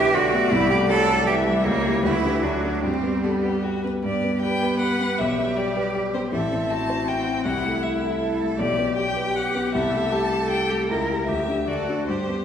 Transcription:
0.00 0.49 B1 medium
0.00 0.16 E3 medium
0.00 0.34 B3 medium
0.00 0.16 G4 medium
0.00 0.16 G4 loud
0.00 0.26 B4 medium
0.00 0.15 E5 loud
0.14 0.35 D3 medium
0.14 0.53 F#4 loud
0.14 0.45 G4 medium
0.14 1.25 D5 loud
0.33 0.54 A3 medium
0.33 0.52 B3 medium
0.51 1.62 C2 medium
0.51 0.91 G3 medium
0.51 0.69 E4 loud
0.70 1.01 A3 medium
0.70 0.78 G4 loud
0.88 1.26 F#3 medium
0.88 1.20 G4 medium
0.88 1.26 A4 loud
1.08 1.39 A4 medium
1.26 1.67 E3 medium
1.26 1.34 G4 loud
1.26 1.58 G4 medium
1.26 1.65 E5 medium
1.46 1.66 G3 medium
1.46 1.66 A3 medium
1.64 2.02 C#2 medium
1.64 2.03 G3 medium
1.64 2.03 A#3 loud
1.64 2.04 C#5 loud
1.85 2.02 E4 medium
1.85 2.02 G4 medium
2.02 2.42 D2 medium
2.02 2.11 G3 medium
2.02 2.44 E4 loud
2.02 2.40 B4 medium
2.23 2.44 E3 medium
2.23 2.41 D4 soft
2.23 2.41 G4 medium
2.41 2.82 D2 medium
2.41 2.85 F#3 medium
2.41 2.84 D4 medium
2.41 2.81 F#4 medium
2.64 2.82 D4 medium
2.64 2.82 F#4 medium
2.82 4.01 G2 medium
2.82 3.85 G3 medium
2.82 3.25 C4 medium
2.82 3.19 G4 medium
3.03 3.36 B3 medium
3.23 3.64 B3 medium
3.23 3.56 G4 medium
3.23 3.31 A4 medium
3.43 3.65 G4 medium
3.43 3.76 B4 medium
3.63 3.83 F#4 medium
3.63 3.97 G4 medium
3.83 4.04 B3 soft
3.83 3.91 B4 medium
4.04 5.15 G2 medium
4.04 5.21 B3 medium
4.04 4.41 G4 medium
4.04 4.41 D5 medium
4.24 4.55 B3 medium
4.41 4.74 G4 medium
4.41 5.22 B4 medium
4.41 4.79 G5 loud
4.63 4.93 B4 medium
4.80 5.12 G4 medium
4.80 5.20 F#5 medium
5.00 5.19 B3 medium
5.19 6.29 B1 medium
5.19 6.32 G3 medium
5.19 6.32 G4 medium
5.19 5.58 E5 medium
5.38 5.68 B3 medium
5.56 5.87 G4 medium
5.56 5.94 D5 medium
5.76 6.06 B4 medium
5.94 6.25 G4 medium
6.14 6.33 B3 soft
6.14 6.21 C5 medium
6.32 7.42 A1 medium
6.32 7.47 C4 medium
6.32 6.73 A4 medium
6.32 6.72 E5 medium
6.51 6.82 C4 medium
6.70 7.01 E4 medium
6.70 7.48 F#4 medium
6.70 7.09 A5 medium
6.90 7.20 C5 medium
7.08 7.38 E4 medium
7.08 7.44 G5 medium
7.27 7.46 C4 medium
7.45 8.56 C2 medium
7.45 8.58 E4 medium
7.45 8.21 E4 medium
7.45 7.84 F#5 medium
7.65 7.95 A3 soft
7.83 8.15 E4 medium
7.83 8.21 E5 medium
8.03 8.33 A4 medium
8.22 8.52 E4 medium
8.22 8.62 A4 medium
8.41 8.60 A3 medium
8.59 9.70 B1 medium
8.59 10.85 G4 medium
8.59 8.98 G4 medium
8.59 8.95 D5 medium
8.79 9.09 B3 medium
8.97 9.28 G4 medium
8.97 9.73 G4 medium
8.97 9.37 G5 loud
9.16 9.47 B4 medium
9.35 9.66 G4 medium
9.35 9.74 F#5 loud
9.55 9.74 B3 medium
9.74 10.86 C2 medium
9.74 10.87 A4 medium
9.74 10.14 E5 medium
9.93 10.24 A3 soft
10.12 10.43 G4 medium
10.12 10.50 A5 loud
10.32 10.63 A4 medium
10.51 10.82 G4 medium
10.51 10.71 G5 loud
10.70 10.90 A3 medium
10.70 10.88 G4 medium
10.89 11.27 C#2 medium
10.89 11.30 E4 medium
10.89 11.26 A#4 medium
10.89 11.29 A#4 medium
11.10 11.27 E4 soft
11.10 11.27 G4 medium
11.27 11.66 D2 medium
11.27 11.66 G4 medium
11.27 11.68 G4 medium
11.27 11.69 E5 medium
11.48 11.66 D4 soft
11.48 11.66 G4 soft
11.67 12.07 D2 medium
11.67 12.11 F#4 medium
11.67 12.07 A4 medium
11.67 12.06 D5 medium
11.88 12.06 D4 soft
11.88 12.06 F#4 soft
12.06 12.45 G2 medium
12.06 12.44 G4 medium
12.06 12.45 G4 soft
12.06 12.45 C5 medium
12.29 12.45 B3 soft

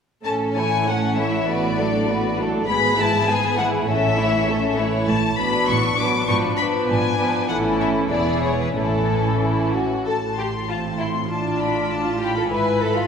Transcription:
0.24 2.65 A1 soft
0.24 2.65 A2 soft
0.24 0.54 A3 soft
0.24 0.54 C#4 soft
0.24 0.54 A4 soft
0.24 0.33 A5 soft
0.56 0.88 E3 soft
0.56 0.87 A3 soft
0.56 0.87 E4 soft
0.56 0.87 C#5 soft
0.56 0.87 G#5 medium
0.86 1.17 A3 soft
0.86 1.17 C#4 soft
0.86 1.18 C#4 soft
0.86 1.18 A4 soft
0.86 1.18 F#5 soft
1.18 1.49 E3 soft
1.18 1.48 A3 soft
1.18 1.49 E4 soft
1.18 1.49 C#5 soft
1.18 1.48 E5 soft
1.48 1.77 A3 soft
1.48 1.77 B3 soft
1.48 1.76 F#4 soft
1.48 1.77 B4 soft
1.48 2.39 D5 soft
1.79 2.09 F#3 soft
1.79 2.08 A3 soft
1.79 2.09 D4 soft
1.79 2.09 A4 soft
2.09 2.38 A3 soft
2.09 2.39 B3 soft
2.09 2.39 F#4 soft
2.09 2.39 B4 soft
2.39 2.69 F#3 soft
2.39 2.69 A3 soft
2.39 2.69 D4 soft
2.39 2.69 A4 soft
2.67 3.87 G#1 soft
2.67 3.88 G#2 soft
2.67 2.96 G#3 soft
2.67 2.96 B3 soft
2.67 2.96 G#4 soft
2.67 2.97 B4 soft
2.67 2.95 B5 medium
2.98 3.28 E3 soft
2.98 3.27 G#3 soft
2.98 3.28 E4 soft
2.98 3.27 G#4 soft
2.98 3.28 A5 medium
3.28 3.58 G#3 soft
3.28 3.58 B3 soft
3.28 3.56 G#4 soft
3.28 3.58 B4 soft
3.28 3.58 G#5 medium
3.58 3.88 E3 soft
3.58 3.88 G#3 soft
3.58 3.88 E4 soft
3.58 3.87 G#4 soft
3.58 3.66 F#5 medium
3.88 5.06 A1 soft
3.88 5.06 A2 soft
3.88 4.16 A3 soft
3.88 4.16 C#4 soft
3.88 4.16 A4 soft
3.88 4.76 E5 medium
4.18 4.48 E3 soft
4.18 4.46 A3 soft
4.18 4.48 E4 soft
4.18 4.48 C#5 soft
4.48 4.76 A3 soft
4.48 4.78 C#4 soft
4.48 4.79 A4 soft
4.77 5.08 E3 soft
4.77 5.08 A3 soft
4.77 5.08 E4 soft
4.77 5.08 C#5 soft
5.07 5.59 A1 medium
5.07 5.59 A2 medium
5.07 5.36 A5 medium
5.38 5.98 F#3 soft
5.38 5.97 B3 soft
5.38 5.97 D4 soft
5.38 5.97 B4 soft
5.38 5.68 B5 medium
5.68 6.19 A1 medium
5.68 6.19 A2 medium
5.68 5.98 C#6 medium
5.97 6.28 F#3 soft
5.97 6.27 B3 soft
5.97 6.28 D4 soft
5.97 6.28 B4 soft
5.97 6.28 D6 medium
6.28 6.79 G#1 medium
6.28 6.79 G#2 medium
6.28 6.57 F3 soft
6.28 6.58 B3 soft
6.28 6.57 D4 soft
6.28 6.57 B4 soft
6.28 6.36 C#6 medium
6.58 7.18 F3 soft
6.58 7.18 B3 soft
6.58 7.17 D4 soft
6.58 7.17 B4 soft
6.58 6.66 B5 medium
6.89 7.40 G#1 medium
6.89 7.40 G#2 medium
6.89 7.49 G#5 medium
7.18 7.49 F3 soft
7.18 7.49 B3 soft
7.18 7.49 D4 soft
7.18 7.49 B4 soft
7.48 8.08 A1 soft
7.48 8.08 A2 soft
7.48 8.09 E3 soft
7.48 8.09 C#4 soft
7.48 8.08 E4 soft
7.48 8.08 A4 soft
7.48 7.56 F#5 medium
7.80 7.88 E5 soft
8.11 8.76 E1 soft
8.11 8.76 E2 soft
8.11 8.76 E3 soft
8.11 8.77 B3 soft
8.11 8.75 E4 soft
8.11 8.77 G#4 soft
8.11 8.43 D5 medium
8.44 8.60 C#5 soft
8.61 8.68 B4 soft
8.76 9.85 A1 soft
8.76 9.85 A2 soft
8.76 9.85 E3 soft
8.76 9.84 C#4 soft
8.76 9.35 E4 soft
8.76 9.35 A4 soft
8.76 9.74 A4 soft
9.42 9.72 E4 soft
9.75 10.07 F#4 soft
10.07 12.47 A1 soft
10.07 12.47 A2 soft
10.07 10.15 A4 soft
10.07 10.36 A5 soft
10.38 10.46 G4 soft
10.38 10.69 C6 soft
10.68 11.26 C4 soft
10.68 10.77 F4 soft
10.68 11.00 A5 soft
10.99 11.07 E4 soft
10.99 11.30 C6 soft
11.30 12.04 D4 soft
11.30 12.49 F4 soft
11.30 11.58 A5 soft
11.61 11.91 B5 soft
11.91 12.21 A5 soft
12.05 12.21 F4 soft
12.19 12.35 G4 soft
12.19 12.50 B5 soft
12.36 12.42 A4 soft
12.49 13.07 G#1 soft
12.49 13.07 G#2 soft
12.49 13.07 E4 soft
12.49 12.79 B4 soft
12.49 12.78 G#5 soft
12.80 12.95 A4 medium
12.80 13.07 B5 soft
12.95 13.07 F4 soft

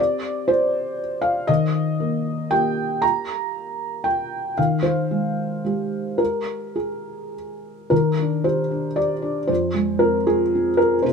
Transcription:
0.00 1.45 C4 soft
0.00 1.45 G4 soft
0.00 0.48 D5 medium
0.48 0.98 C5 medium
1.22 1.47 F5 medium
1.47 2.99 D#3 medium
1.47 2.50 D#5 medium
2.00 2.50 A#3 soft
2.51 4.54 A#3 soft
2.51 4.54 G4 soft
2.51 3.02 G5 medium
3.02 4.05 A#5 medium
4.04 4.57 G5 medium
4.58 6.16 D#3 soft
4.58 4.84 F5 medium
4.83 6.19 C5 medium
5.11 5.63 G#3 soft
5.64 7.87 G#3 soft
5.64 7.88 G4 soft
6.18 6.76 A#4 medium
6.76 7.34 G#4 soft
7.90 9.46 D#3 soft
7.90 8.44 A#4 medium
8.19 8.61 D4 soft
8.44 8.87 G4 soft
8.44 8.97 C5 medium
8.71 9.13 D4 soft
8.96 9.40 G4 soft
8.96 9.49 D5 medium
9.22 9.49 D4 soft
9.47 10.99 F2 soft
9.47 10.00 C5 medium
9.74 10.16 G#3 soft
9.99 10.41 C4 soft
9.99 10.26 A#4 medium
10.27 10.68 F4 soft
10.27 10.78 G#4 medium
10.55 10.95 C4 soft
10.77 11.03 F4 soft
10.77 11.03 A#4 medium
11.02 11.13 C3 soft
11.02 11.13 C5 medium

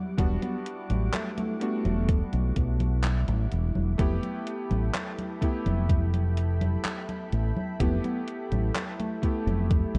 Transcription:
0.00 0.12 G3 medium
0.00 3.95 G3 medium
0.00 0.12 B3 medium
0.00 0.13 D4 medium
0.00 9.98 E4 medium
0.00 0.13 F#4 medium
0.00 3.95 F#5 medium
0.00 3.95 D6 medium
0.17 0.37 E1 loud
0.17 0.47 G3 medium
0.17 0.47 B3 medium
0.17 0.33 B3 medium
0.17 0.47 D4 medium
0.17 0.47 F#4 medium
0.17 kick loud
0.17 closed hi-hat loud
0.17 high conga soft
0.41 0.57 B3 medium
0.41 closed hi-hat soft
0.41 high conga soft
0.66 closed hi-hat medium
0.90 1.08 A1 medium
0.90 closed hi-hat soft
0.90 high conga medium
1.13 1.29 A3 medium
1.13 clap loud
1.13 closed hi-hat medium
1.13 high conga soft
1.37 1.52 A3 medium
1.37 closed hi-hat soft
1.37 high conga soft
1.60 3.93 G3 medium
1.60 2.56 A3 loud
1.60 3.93 B3 medium
1.60 3.94 D4 medium
1.60 3.94 F#4 medium
1.60 closed hi-hat medium
1.85 2.21 E1 loud
1.85 closed hi-hat soft
1.85 high conga medium
2.09 kick loud
2.09 closed hi-hat loud
2.09 high conga soft
2.33 2.51 B1 loud
2.33 closed hi-hat soft
2.33 high conga soft
2.56 3.27 B1 loud
2.56 kick medium
2.56 closed hi-hat medium
2.80 closed hi-hat soft
2.80 high conga medium
3.04 clap loud
3.04 closed hi-hat medium
3.04 high conga soft
3.28 3.46 A1 loud
3.28 closed hi-hat soft
3.28 high conga soft
3.52 3.70 E1 loud
3.52 closed hi-hat soft
3.75 3.94 E1 medium
3.75 high conga medium
3.98 4.17 F1 loud
3.98 5.36 A3 medium
3.98 5.36 B3 medium
3.98 5.37 E4 medium
3.98 5.37 G4 loud
3.98 9.98 A4 medium
3.98 9.98 G5 medium
3.98 9.98 B5 medium
3.98 kick loud
3.98 closed hi-hat medium
3.98 high conga soft
4.23 closed hi-hat soft
4.23 high conga soft
4.47 closed hi-hat medium
4.71 4.89 A1 medium
4.71 closed hi-hat soft
4.71 high conga medium
4.95 clap loud
4.95 closed hi-hat medium
4.95 high conga soft
5.19 closed hi-hat soft
5.19 high conga soft
5.41 7.74 A3 medium
5.41 7.74 B3 medium
5.41 6.37 E4 loud
5.41 7.75 E4 medium
5.41 7.75 G4 medium
5.41 kick medium
5.41 closed hi-hat medium
5.66 6.76 F1 loud
5.66 closed hi-hat soft
5.66 high conga medium
5.89 kick loud
5.89 closed hi-hat loud
5.89 high conga soft
6.14 closed hi-hat soft
6.14 high conga soft
6.37 closed hi-hat medium
6.61 closed hi-hat soft
6.61 high conga medium
6.85 clap loud
6.85 closed hi-hat medium
6.85 high conga soft
7.09 closed hi-hat soft
7.09 high conga soft
7.32 7.51 A1 medium
7.32 closed hi-hat soft
7.57 high conga medium
7.80 7.98 F1 loud
7.80 8.09 A3 medium
7.80 8.09 B3 medium
7.80 7.96 B3 medium
7.80 8.09 E4 medium
7.80 8.09 G4 medium
7.80 kick loud
7.80 closed hi-hat loud
7.80 high conga soft
8.04 8.19 B3 medium
8.04 closed hi-hat soft
8.04 high conga soft
8.28 closed hi-hat medium
8.52 8.70 A1 medium
8.52 closed hi-hat soft
8.52 high conga medium
8.76 clap loud
8.76 closed hi-hat medium
8.76 high conga soft
8.99 9.18 A3 medium
8.99 closed hi-hat soft
8.99 high conga soft
9.22 9.98 A3 medium
9.22 9.98 A3 loud
9.22 9.98 B3 medium
9.22 9.98 E4 medium
9.22 9.98 G4 medium
9.22 kick medium
9.22 closed hi-hat medium
9.47 9.83 F1 loud
9.47 closed hi-hat soft
9.47 high conga medium
9.71 kick loud
9.71 closed hi-hat medium
9.71 high conga soft
9.94 9.98 C2 loud
9.94 closed hi-hat soft
9.94 high conga soft

